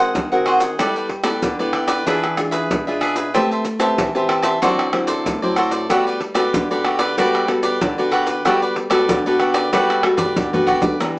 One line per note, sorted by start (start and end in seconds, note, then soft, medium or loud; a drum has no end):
0.00 0.12 G#3 medium
0.00 0.12 C4 medium
0.00 0.13 F#4 medium
0.00 0.29 G#4 medium
0.00 0.13 A#4 medium
0.00 0.29 C5 medium
0.00 0.29 F#5 medium
0.15 0.76 D#3 medium
0.15 pandeiro medium
0.15 maracas medium
0.15 surdo loud
0.32 0.74 C4 medium
0.32 0.74 F#4 medium
0.32 0.45 G#4 soft
0.32 0.75 A#4 medium
0.32 0.46 C5 soft
0.32 0.46 F#5 soft
0.32 pandeiro soft
0.32 maracas soft
0.46 0.61 F#4 medium
0.46 0.61 G#4 medium
0.46 0.60 C5 medium
0.46 0.59 F#5 medium
0.46 pandeiro medium
0.46 tamborim medium
0.60 0.77 G#4 soft
0.60 0.77 C5 soft
0.60 0.77 F#5 medium
0.60 pandeiro medium
0.60 maracas medium
0.60 surdo soft
0.79 1.40 G3 medium
0.79 1.09 B3 medium
0.79 0.94 E4 medium
0.79 1.09 E4 medium
0.79 0.94 G4 medium
0.79 1.09 A4 medium
0.79 0.94 B4 medium
0.79 0.94 D5 medium
0.79 pandeiro medium
0.79 tamborim medium
0.79 maracas medium
0.79 surdo medium
0.96 1.09 G4 soft
0.96 1.09 B4 soft
0.96 1.09 D5 soft
0.96 pandeiro soft
0.96 maracas soft
1.09 muted cavaquinho stroke soft
1.09 pandeiro medium
1.09 surdo soft
1.24 1.52 B3 medium
1.24 1.52 E4 medium
1.24 1.57 G4 soft
1.24 1.53 A4 medium
1.24 1.56 B4 medium
1.24 1.56 D5 medium
1.24 pandeiro medium
1.24 tamborim medium
1.24 maracas medium
1.42 2.04 D3 medium
1.42 pandeiro medium
1.42 maracas medium
1.42 surdo loud
1.59 2.02 B3 medium
1.59 2.02 E4 medium
1.59 1.73 G4 soft
1.59 2.03 A4 medium
1.59 1.73 B4 soft
1.59 1.74 D5 medium
1.59 pandeiro soft
1.59 maracas soft
1.59 surdo soft
1.73 1.89 E4 soft
1.73 1.88 G4 soft
1.73 1.87 B4 medium
1.73 1.86 D5 medium
1.73 pandeiro medium
1.73 tamborim medium
1.87 2.05 G4 medium
1.87 2.04 B4 medium
1.87 2.04 D5 medium
1.87 pandeiro medium
1.87 tamborim medium
1.87 maracas medium
1.87 surdo soft
2.06 2.67 E3 medium
2.06 2.36 D4 medium
2.06 2.25 D4 medium
2.06 2.26 F4 medium
2.06 2.36 G#4 medium
2.06 2.26 G#4 medium
2.06 2.37 B4 medium
2.06 2.37 E5 medium
2.06 pandeiro medium
2.06 maracas medium
2.06 surdo medium
2.24 pandeiro soft
2.24 tamborim medium
2.24 maracas soft
2.37 2.81 D4 medium
2.37 2.81 F4 medium
2.37 2.81 G#4 medium
2.37 muted cavaquinho stroke soft
2.37 pandeiro medium
2.37 tamborim medium
2.37 maracas medium
2.51 2.85 G#4 medium
2.51 2.84 B4 medium
2.51 2.84 E5 medium
2.51 pandeiro medium
2.51 maracas medium
2.51 surdo soft
2.70 3.31 B2 medium
2.70 pandeiro medium
2.70 maracas medium
2.70 surdo loud
2.87 3.30 D4 medium
2.87 3.30 F4 medium
2.87 3.30 G#4 medium
2.87 3.00 G#4 soft
2.87 3.01 B4 soft
2.87 3.01 E5 soft
2.87 pandeiro soft
2.87 maracas soft
3.01 3.16 D4 medium
3.01 3.16 G#4 medium
3.01 3.15 B4 medium
3.01 3.14 E5 medium
3.01 pandeiro medium
3.01 tamborim medium
3.16 3.33 G#4 soft
3.16 3.32 B4 soft
3.16 3.32 E5 soft
3.16 pandeiro medium
3.16 maracas medium
3.16 surdo soft
3.34 3.95 A3 medium
3.34 3.65 C4 medium
3.34 3.49 G4 medium
3.34 3.65 G4 medium
3.34 3.65 B4 medium
3.34 3.49 C5 medium
3.34 3.50 E5 medium
3.34 3.50 A5 medium
3.34 pandeiro medium
3.34 tamborim medium
3.34 maracas medium
3.34 surdo medium
3.51 3.65 C5 soft
3.51 3.65 E5 soft
3.51 3.65 A5 medium
3.51 pandeiro soft
3.51 maracas soft
3.65 muted cavaquinho stroke soft
3.65 pandeiro medium
3.65 maracas medium
3.79 4.08 C4 medium
3.79 4.08 G4 medium
3.79 4.08 B4 medium
3.79 4.13 C5 medium
3.79 4.12 E5 medium
3.79 4.12 A5 medium
3.79 pandeiro medium
3.79 tamborim medium
3.79 maracas medium
3.98 4.59 E3 medium
3.98 pandeiro medium
3.98 maracas medium
3.98 surdo loud
4.15 4.57 C4 medium
4.15 4.58 G4 medium
4.15 4.58 B4 medium
4.15 4.28 C5 soft
4.15 4.29 E5 soft
4.15 4.29 A5 medium
4.15 pandeiro soft
4.15 maracas soft
4.15 surdo soft
4.29 4.44 G4 medium
4.29 4.43 C5 medium
4.29 4.42 E5 medium
4.29 4.41 A5 medium
4.29 pandeiro medium
4.29 tamborim medium
4.42 4.60 C5 medium
4.42 4.60 E5 medium
4.42 4.59 A5 medium
4.42 pandeiro medium
4.42 tamborim medium
4.42 maracas medium
4.42 surdo soft
4.62 5.23 D3 medium
4.62 4.89 F#3 medium
4.62 4.89 C4 medium
4.62 4.89 E4 medium
4.62 4.91 F#4 medium
4.62 4.92 A4 medium
4.62 4.92 C5 medium
4.62 4.92 D5 medium
4.62 pandeiro medium
4.62 maracas medium
4.62 surdo medium
4.79 pandeiro soft
4.79 tamborim medium
4.79 maracas soft
4.92 5.36 F#3 medium
4.92 5.36 C4 medium
4.92 5.37 E4 medium
4.92 muted cavaquinho stroke soft
4.92 pandeiro medium
4.92 tamborim medium
5.07 5.40 A4 medium
5.07 5.40 C5 medium
5.07 5.39 D5 medium
5.07 pandeiro medium
5.07 maracas medium
5.07 surdo soft
5.25 5.86 A2 medium
5.25 pandeiro medium
5.25 maracas medium
5.25 surdo loud
5.42 5.85 F#3 medium
5.42 5.85 C4 medium
5.42 5.86 E4 medium
5.42 5.56 A4 soft
5.42 5.56 C5 soft
5.42 5.57 D5 medium
5.42 pandeiro soft
5.42 maracas soft
5.56 5.72 F#4 medium
5.56 5.72 A4 medium
5.56 5.71 C5 medium
5.56 5.70 D5 medium
5.56 pandeiro medium
5.56 tamborim medium
5.56 maracas medium
5.71 5.88 A4 soft
5.71 5.88 C5 soft
5.71 5.87 D5 medium
5.71 pandeiro medium
5.71 maracas medium
5.71 surdo soft
5.89 6.50 G3 medium
5.89 6.20 B3 medium
5.89 6.05 F#4 medium
5.89 6.20 F#4 medium
5.89 6.05 G4 medium
5.89 6.20 A4 medium
5.89 6.05 B4 medium
5.89 6.06 D5 medium
5.89 pandeiro medium
5.89 tamborim medium
5.89 maracas medium
5.89 surdo medium
6.07 6.20 G4 soft
6.07 6.20 B4 medium
6.07 6.20 D5 medium
6.07 pandeiro soft
6.07 maracas soft
6.20 muted cavaquinho stroke soft
6.20 pandeiro medium
6.35 6.63 B3 medium
6.35 6.63 F#4 medium
6.35 6.68 G4 medium
6.35 6.64 A4 medium
6.35 6.67 B4 medium
6.35 6.67 D5 medium
6.35 pandeiro medium
6.35 tamborim medium
6.35 maracas medium
6.53 7.14 D3 medium
6.53 pandeiro medium
6.53 maracas medium
6.53 surdo loud
6.71 7.13 B3 medium
6.71 7.13 F#4 medium
6.71 6.84 G4 soft
6.71 7.13 A4 medium
6.71 6.84 B4 soft
6.71 6.85 D5 medium
6.71 pandeiro soft
6.71 maracas soft
6.71 surdo soft
6.84 7.00 F#4 soft
6.84 6.99 G4 medium
6.84 6.99 B4 medium
6.84 6.98 D5 medium
6.84 pandeiro medium
6.84 tamborim medium
6.99 7.16 G4 medium
6.99 7.15 B4 medium
6.99 7.15 D5 medium
6.99 pandeiro medium
6.99 tamborim medium
6.99 maracas medium
6.99 surdo soft
7.17 7.78 G3 medium
7.17 7.44 B3 medium
7.17 7.48 F#4 medium
7.17 7.45 F#4 medium
7.17 7.48 G4 medium
7.17 7.45 A4 medium
7.17 7.48 B4 medium
7.17 7.49 D5 medium
7.17 pandeiro medium
7.17 maracas medium
7.17 surdo medium
7.35 pandeiro soft
7.35 tamborim medium
7.35 maracas soft
7.48 7.79 B3 medium
7.48 7.79 F#4 medium
7.48 7.79 A4 medium
7.48 muted cavaquinho stroke soft
7.48 pandeiro medium
7.48 tamborim medium
7.63 7.96 G4 medium
7.63 7.95 B4 medium
7.63 7.95 D5 medium
7.63 pandeiro medium
7.63 maracas medium
7.63 surdo soft
7.81 8.42 D3 medium
7.81 pandeiro medium
7.81 maracas medium
7.81 surdo loud
7.98 8.41 B3 medium
7.98 8.41 F#4 medium
7.98 8.11 G4 soft
7.98 8.41 A4 medium
7.98 8.12 B4 soft
7.98 8.12 D5 medium
7.98 pandeiro soft
7.98 maracas soft
8.11 8.27 F#4 medium
8.11 8.27 G4 medium
8.11 8.26 B4 medium
8.11 8.25 D5 medium
8.11 pandeiro medium
8.11 tamborim medium
8.26 8.43 G4 soft
8.26 8.43 B4 medium
8.26 8.42 D5 soft
8.26 pandeiro medium
8.26 maracas medium
8.26 surdo soft
8.45 9.06 G3 medium
8.45 8.88 B3 medium
8.45 8.60 F#4 medium
8.45 8.88 F#4 medium
8.45 8.60 G4 medium
8.45 8.88 A4 medium
8.45 8.61 B4 medium
8.45 8.61 D5 medium
8.45 pandeiro medium
8.45 tamborim medium
8.45 maracas medium
8.45 surdo medium
8.62 8.75 G4 soft
8.62 8.75 B4 medium
8.62 8.76 D5 medium
8.62 pandeiro soft
8.62 maracas soft
8.76 muted cavaquinho stroke soft
8.76 pandeiro medium
8.90 9.18 B3 medium
8.90 9.19 F#4 medium
8.90 9.23 G4 medium
8.90 9.19 A4 medium
8.90 9.23 B4 medium
8.90 9.22 D5 medium
8.90 pandeiro medium
8.90 tamborim medium
8.90 maracas medium
9.09 9.70 D3 medium
9.09 pandeiro medium
9.09 maracas medium
9.09 surdo loud
9.26 9.68 B3 medium
9.26 9.69 F#4 medium
9.26 9.39 G4 soft
9.26 9.69 A4 medium
9.26 9.40 B4 medium
9.26 9.40 D5 medium
9.26 pandeiro soft
9.26 maracas soft
9.26 surdo soft
9.39 9.55 F#4 soft
9.39 9.55 G4 medium
9.39 9.54 B4 medium
9.39 9.53 D5 medium
9.39 pandeiro medium
9.39 tamborim medium
9.54 9.71 G4 medium
9.54 9.71 B4 medium
9.54 9.70 D5 medium
9.54 pandeiro medium
9.54 tamborim medium
9.54 maracas medium
9.54 surdo soft
9.73 10.33 G3 medium
9.73 10.00 B3 medium
9.73 10.02 F#4 medium
9.73 10.00 F#4 medium
9.73 10.02 G4 medium
9.73 10.00 A4 medium
9.73 10.03 B4 medium
9.73 10.03 D5 medium
9.73 pandeiro medium
9.73 maracas medium
9.73 surdo medium
9.90 pandeiro soft
9.90 tamborim medium
9.90 maracas soft
10.03 10.47 B3 medium
10.03 10.47 F#4 medium
10.03 10.47 A4 medium
10.03 muted cavaquinho stroke soft
10.03 pandeiro medium
10.03 tamborim loud
10.17 10.50 G4 medium
10.17 10.50 B4 medium
10.17 10.50 D5 medium
10.17 surdo medium
10.17 pandeiro medium
10.17 maracas medium
10.17 surdo soft
10.36 10.97 D3 medium
10.36 pandeiro medium
10.36 maracas medium
10.36 surdo loud
10.53 10.96 B3 medium
10.53 10.96 F#4 medium
10.53 10.66 G4 soft
10.53 10.96 A4 medium
10.53 10.67 B4 soft
10.53 10.67 D5 medium
10.53 surdo medium
10.53 pandeiro soft
10.53 maracas soft
10.67 10.82 F#4 medium
10.67 10.82 G4 medium
10.67 10.82 B4 medium
10.67 10.81 D5 medium
10.67 pandeiro medium
10.67 surdo medium
10.82 10.99 G4 soft
10.82 10.98 B4 soft
10.82 10.98 D5 soft
10.82 pandeiro medium
10.82 maracas medium
10.82 surdo medium
11.00 11.19 E3 medium
11.00 11.19 B3 medium
11.00 11.19 D4 medium
11.00 11.19 G4 medium
11.00 pandeiro medium
11.00 tamborim medium
11.00 low agogo medium
11.00 maracas medium
11.00 surdo medium